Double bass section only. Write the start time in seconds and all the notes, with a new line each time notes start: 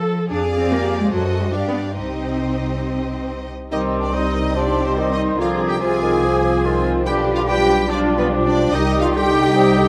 0.29 F2
1.12 F#2
1.54 G2
1.97 C2
3.72 C2
5.40 C2
7.06 B1
8.73 C2